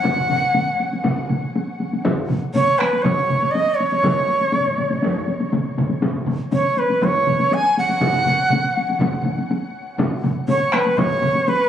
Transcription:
Already playing: shakuhachi F#5
0.04 taiko, taiko low-mid, taiko mid, taiko high
0.17 taiko low-mid, taiko mid
0.30 taiko low-mid, taiko mid, taiko high
0.55 taiko low-mid, taiko mid, taiko high
0.80 taiko high
0.93 taiko high
1.04 taiko, taiko low-mid, taiko mid, taiko high
1.29 taiko low-mid, taiko mid, taiko high
1.56 taiko high
1.80 taiko high
1.93 taiko high
2.05 taiko, taiko low-mid, taiko mid, taiko high
2.29 taiko low-mid, taiko mid, taiko high
2.54 shakuhachi C#5, taiko low-mid, taiko mid, taiko high
2.78 shakuhachi B4, taiko rim
2.80 taiko rim, taiko high
2.93 taiko high
3.02 shakuhachi C#5, taiko, taiko low-mid, taiko mid, taiko high
3.29 taiko low-mid, taiko mid, taiko high
3.43 taiko high
3.51 shakuhachi D#5
3.55 taiko high
3.75 shakuhachi C#5
3.80 taiko high
3.92 taiko high
4.03 taiko, taiko low-mid, taiko mid, taiko high
4.29 taiko high
4.41 taiko high
4.52 taiko low-mid, taiko mid, taiko high
4.66 taiko low-mid, taiko mid
4.77 taiko low-mid, taiko mid, taiko high
4.90 taiko low-mid, taiko mid, taiko high
5.02 taiko, taiko high
5.28 taiko high
5.40 taiko high
5.52 taiko low-mid, taiko mid, taiko high
5.78 taiko low-mid, taiko mid, taiko high
5.89 taiko high
6.02 taiko, taiko low-mid, taiko mid, taiko high
6.15 taiko low-mid, taiko mid
6.27 taiko low-mid, taiko mid, taiko high
6.51 shakuhachi C#5, taiko low-mid, taiko mid, taiko high
6.77 shakuhachi B4, taiko high
6.90 taiko high
7.02 shakuhachi C#5, taiko, taiko low-mid, taiko mid, taiko high
7.27 taiko low-mid, taiko mid, taiko high
7.40 taiko high
7.52 shakuhachi G#5, taiko high
7.77 shakuhachi F#5, taiko high
7.89 taiko high
8.01 taiko, taiko low-mid, taiko mid, taiko high
8.13 taiko low-mid, taiko mid
8.25 taiko low-mid, taiko mid, taiko high
8.50 taiko low-mid, taiko mid, taiko high
8.77 taiko high
8.89 taiko high
8.99 taiko, taiko low-mid, taiko mid, taiko high
9.23 taiko low-mid, taiko mid, taiko high
9.38 taiko high
9.51 taiko high
9.98 taiko, taiko low-mid, taiko mid, taiko high
10.23 taiko low-mid, taiko mid, taiko high
10.48 shakuhachi C#5, taiko low-mid, taiko mid, taiko high
10.72 shakuhachi B4, taiko rim, taiko high
10.86 taiko high
10.97 shakuhachi C#5, taiko, taiko low-mid, taiko mid, taiko high
11.22 taiko low-mid, taiko mid, taiko high
11.35 taiko high
11.48 shakuhachi B4, taiko high

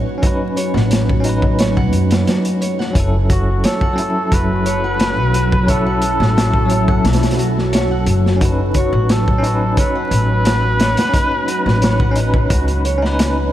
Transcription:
Already playing: ambient pad F#3 F#4, tine electric piano C#4 D#4 B4
0.18 tine electric piano C#4
0.22 tine electric piano D#4, nylon-string guitar F#4, kick, closed hi-hat
0.27 tine electric piano B4
0.56 nylon-string guitar C#5, closed hi-hat
0.74 upright bass A1, nylon-string guitar F#5, snare
0.91 snare, closed hi-hat
1.09 kick
1.20 tine electric piano C#4, closed hi-hat
1.24 tine electric piano D#4, nylon-string guitar F#4
1.29 tine electric piano B4
1.42 kick
1.59 nylon-string guitar C#5, snare, closed hi-hat
1.76 nylon-string guitar F#5, kick
1.93 upright bass F#2, closed hi-hat
2.11 snare, closed hi-hat
2.27 nylon-string guitar F#4, snare, closed hi-hat
2.45 closed hi-hat
2.61 nylon-string guitar C#5, closed hi-hat
2.79 nylon-string guitar F#5, snare
2.90 tine electric piano F#3 C#4
2.95 upright bass F#1, ambient pad F#3 F#4, tine electric piano E4, kick, closed hi-hat
3.00 tine electric piano A4
3.29 nylon-string guitar F#4, muted trumpet F#4, kick, closed hi-hat
3.64 muted trumpet A4, nylon-string guitar C#5, snare, closed hi-hat
3.81 nylon-string guitar F#5, kick
3.93 tine electric piano F#3 C#4
3.98 tine electric piano E4, closed hi-hat
4.02 tine electric piano A4
4.32 upright bass F#1, nylon-string guitar F#4, muted trumpet B4, kick, closed hi-hat
4.66 nylon-string guitar C#5, closed hi-hat
4.84 nylon-string guitar F#5
5.00 snare, closed hi-hat
5.18 upright bass B1
5.34 nylon-string guitar F#4, closed hi-hat
5.52 kick
5.64 tine electric piano F#3 C#4
5.68 tine electric piano E4, muted trumpet A4, nylon-string guitar C#5, kick, closed hi-hat
5.73 tine electric piano A4
5.86 nylon-string guitar F#5
6.02 closed hi-hat
6.20 upright bass A1, snare
6.37 nylon-string guitar F#4, snare, closed hi-hat
6.54 kick
6.65 tine electric piano F#3 C#4
6.70 tine electric piano E4, nylon-string guitar C#5, closed hi-hat
6.75 tine electric piano A4
6.88 nylon-string guitar F#5, kick
7.04 upright bass B1, snare, closed hi-hat
7.13 snare, closed hi-hat
7.23 snare, closed hi-hat
7.31 snare, closed hi-hat
7.39 nylon-string guitar F#4, closed hi-hat
7.58 snare
7.73 nylon-string guitar C#5, snare, closed hi-hat
7.91 nylon-string guitar F#5
8.06 upright bass F#1, closed hi-hat
8.26 snare
8.36 tine electric piano C#4
8.41 tine electric piano D#4, nylon-string guitar F#4, kick, closed hi-hat
8.45 tine electric piano B4
8.74 muted trumpet F#4, nylon-string guitar C#5, kick, closed hi-hat
8.93 upright bass A1, nylon-string guitar F#5
9.09 muted trumpet A4, snare, closed hi-hat
9.28 kick
9.38 tine electric piano C#4
9.43 tine electric piano D#4, nylon-string guitar F#4, closed hi-hat
9.47 tine electric piano B4
9.77 muted trumpet B4, nylon-string guitar C#5, kick, closed hi-hat
9.95 nylon-string guitar F#5
10.11 upright bass A1, closed hi-hat
10.45 nylon-string guitar F#4, snare, closed hi-hat
10.80 nylon-string guitar C#5, snare, closed hi-hat
10.97 nylon-string guitar F#5, snare, closed hi-hat
11.09 tine electric piano C#4
11.14 tine electric piano D#4, kick, closed hi-hat
11.18 tine electric piano B4
11.48 nylon-string guitar F#4, closed hi-hat
11.66 upright bass A1, snare
11.82 nylon-string guitar C#5, snare, closed hi-hat
12.00 nylon-string guitar F#5, kick
12.11 tine electric piano C#4
12.16 tine electric piano D#4, closed hi-hat
12.20 tine electric piano B4
12.34 kick
12.50 upright bass C#2, nylon-string guitar F#4, kick, closed hi-hat
12.68 closed hi-hat
12.85 nylon-string guitar C#5, closed hi-hat
12.98 tine electric piano C#4
13.02 tine electric piano D#4, nylon-string guitar F#5, snare
13.07 tine electric piano B4
13.19 snare, closed hi-hat

